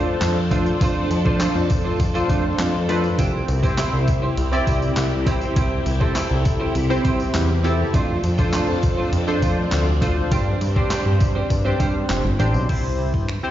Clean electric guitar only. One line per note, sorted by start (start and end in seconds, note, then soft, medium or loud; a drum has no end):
0.00 0.13 A3 medium
0.06 muted clean electric guitar stroke soft
0.36 muted clean electric guitar stroke soft
0.51 0.73 A3 medium
0.51 0.66 D4 medium
0.51 0.65 F4 loud
0.51 0.65 C5 loud
0.66 muted clean electric guitar stroke medium
0.81 1.08 A3 medium
0.81 1.08 D4 medium
0.81 1.09 F4 medium
0.81 1.09 C5 loud
1.10 muted clean electric guitar stroke soft
1.25 1.39 A3 medium
1.25 1.40 D4 medium
1.25 1.40 F4 medium
1.25 1.41 C5 medium
1.40 1.62 A3 medium
1.40 1.55 D4 medium
1.40 1.55 F4 medium
1.40 1.54 C5 medium
1.55 muted clean electric guitar stroke soft
1.70 muted clean electric guitar stroke soft
1.85 1.98 A3 soft
1.85 1.99 D4 medium
1.85 1.99 F4 medium
1.85 2.00 C5 medium
2.00 muted clean electric guitar stroke soft
2.14 2.28 A3 medium
2.14 2.29 D4 medium
2.14 2.29 F4 medium
2.14 2.30 C5 medium
2.29 2.51 A3 medium
2.29 2.44 D4 medium
2.29 2.44 F4 medium
2.29 2.43 C5 medium
2.44 muted clean electric guitar stroke medium
2.74 muted clean electric guitar stroke soft
2.88 3.10 A3 medium
2.88 3.03 D4 medium
2.88 3.03 F4 medium
2.88 3.02 C5 medium
3.03 muted clean electric guitar stroke soft
3.18 3.46 C4 medium
3.18 3.46 E4 medium
3.18 3.46 G4 loud
3.18 3.47 C5 loud
3.48 muted clean electric guitar stroke soft
3.63 3.76 C4 medium
3.63 3.77 E4 medium
3.63 3.78 G4 medium
3.63 3.78 C5 medium
3.78 3.99 C4 medium
3.78 3.93 E4 medium
3.78 3.92 G4 medium
3.78 3.91 C5 medium
3.93 muted clean electric guitar stroke soft
4.07 muted clean electric guitar stroke soft
4.22 4.36 C4 medium
4.22 4.36 E4 medium
4.22 4.37 G4 medium
4.22 4.37 C5 medium
4.37 muted clean electric guitar stroke soft
4.52 4.65 C4 medium
4.52 4.66 E4 medium
4.52 4.67 G4 medium
4.52 4.67 C5 medium
4.67 4.89 C4 medium
4.67 4.82 E4 loud
4.67 4.81 G4 loud
4.67 4.80 C5 loud
4.82 muted clean electric guitar stroke medium
5.11 muted clean electric guitar stroke soft
5.26 5.48 C4 medium
5.26 5.41 E4 medium
5.26 5.40 G4 loud
5.26 5.40 C5 medium
5.41 muted clean electric guitar stroke medium
5.56 5.83 C4 medium
5.56 5.84 E4 medium
5.56 5.84 G4 medium
5.56 5.84 C5 medium
5.85 muted clean electric guitar stroke soft
6.00 6.14 C4 medium
6.00 6.15 E4 medium
6.00 6.15 G4 medium
6.00 6.16 C5 medium
6.15 6.37 C4 medium
6.15 6.30 E4 medium
6.15 6.30 G4 medium
6.15 6.29 C5 loud
6.30 muted clean electric guitar stroke medium
6.45 muted clean electric guitar stroke soft
6.60 6.73 C4 medium
6.60 6.74 E4 medium
6.60 6.74 G4 medium
6.60 6.75 C5 medium
6.75 muted clean electric guitar stroke soft
6.89 7.03 C4 medium
6.89 7.04 E4 medium
6.89 7.04 G4 medium
6.89 7.05 C5 medium
7.04 7.26 C4 medium
7.04 7.19 E4 medium
7.04 7.19 G4 loud
7.04 7.18 C5 loud
7.19 muted clean electric guitar stroke soft
7.49 muted clean electric guitar stroke medium
7.64 7.86 C4 medium
7.64 7.79 E4 medium
7.64 7.78 G4 medium
7.64 7.77 C5 medium
7.79 muted clean electric guitar stroke medium
7.93 8.21 A3 medium
7.93 8.21 D4 medium
7.93 8.22 F4 medium
7.93 8.22 C5 loud
8.23 muted clean electric guitar stroke soft
8.38 8.52 A3 medium
8.38 8.52 D4 medium
8.38 8.53 F4 medium
8.38 8.53 C5 medium
8.53 8.75 A3 medium
8.53 8.68 D4 medium
8.53 8.67 F4 medium
8.53 8.67 C5 medium
8.68 muted clean electric guitar stroke soft
8.83 muted clean electric guitar stroke soft
8.97 9.11 A3 soft
8.97 9.12 D4 medium
8.97 9.12 F4 medium
8.97 9.12 C5 medium
9.12 muted clean electric guitar stroke soft
9.27 9.41 A3 medium
9.27 9.41 D4 medium
9.27 9.42 F4 medium
9.27 9.42 C5 medium
9.42 9.64 A3 medium
9.42 9.57 D4 medium
9.42 9.56 F4 medium
9.42 9.56 C5 medium
9.57 muted clean electric guitar stroke medium
9.87 muted clean electric guitar stroke soft
10.01 10.23 A3 medium
10.01 10.16 D4 medium
10.01 10.16 F4 medium
10.01 10.15 C5 medium
10.16 muted clean electric guitar stroke medium
10.31 10.59 G3 medium
10.31 10.59 D4 medium
10.31 10.59 G4 loud
10.31 10.59 C5 loud
10.61 muted clean electric guitar stroke soft
10.76 10.89 G3 medium
10.76 10.90 D4 medium
10.76 10.90 G4 medium
10.76 10.91 C5 medium
10.90 11.12 G3 medium
10.90 11.05 D4 medium
10.90 11.05 G4 medium
10.90 11.04 C5 medium
11.05 muted clean electric guitar stroke soft
11.20 muted clean electric guitar stroke soft
11.35 11.49 G3 medium
11.35 11.49 D4 medium
11.35 11.50 G4 medium
11.35 11.50 C5 medium
11.50 muted clean electric guitar stroke soft
11.65 11.78 G3 medium
11.65 11.79 D4 medium
11.65 11.80 G4 medium
11.65 11.80 C5 medium
11.80 12.01 G3 medium
11.80 11.95 D4 medium
11.80 11.94 G4 loud
11.80 11.93 C5 loud
11.95 muted clean electric guitar stroke soft
12.24 muted clean electric guitar stroke medium
12.39 12.61 G3 medium
12.39 12.54 D4 medium
12.39 12.53 G4 medium
12.39 12.53 C5 medium
12.54 muted clean electric guitar stroke medium